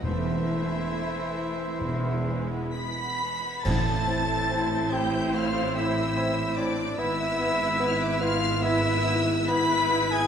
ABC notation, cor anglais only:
X:1
M:4/4
L:1/16
Q:1/4=70
K:Am
V:1 name="Cor anglais"
E12 B4 | A6 G2 F2 E4 D2 | E6 F2 E3 z B3 ^G |]